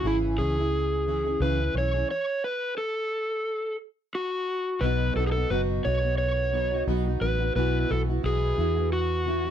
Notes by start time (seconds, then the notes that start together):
0.03 G#1 C#3 E3 C#4 E4 G#4
0.38 C#2 E3 C#4 E4 G#4
0.57 C#4 E4 G#4
1.06 E3 C#4 E4 G#4
1.25 C#4 E4 G#4
1.40 C#2 C#3 E3 C#4 E4 G#4 B4
1.59 C#4 E4 G#4
1.74 B1 E3 C#4 E4 G#4 C#5
1.94 C#4 E4 G#4
2.11 C#5
2.44 B4
2.78 A4
4.15 F#4
4.81 B1 B2 F#3 B3 D#4 F#4 B4
5.15 B1 F#3 B3 D#4 F#4 A4
5.27 G#4
5.32 D#4 F#4 A4
5.38 B3
5.50 F#1 B2 F#3 B3 D#4 F#4 B4
5.84 B1 F#3 B3 D#4 F#4 C#5
6.02 B3 D#4 F#4
6.18 C#5
6.52 F#3 B3 D#4 F#4
6.72 B3 D#4 F#4
6.87 B1 B2 F#3 B3 D#4 F#4
7.06 B3 D#4 F#4
7.21 A1 F#3 B3 D#4 F#4 B4
7.40 B3 D#4 F#4
7.55 B1 B2 E3 B3 E4 F#4 B4
7.89 B1 E3 B3 E4 F#4 A4
8.08 B3 E4 F#4
8.23 B1 B2 E3 B3 E4 F#4 G#4
8.57 E2 E3 B3 E4 F#4
8.77 B3 E4 F#4
8.93 F#4
9.26 E3 B3 E4 F#4
9.45 B3 E4 F#4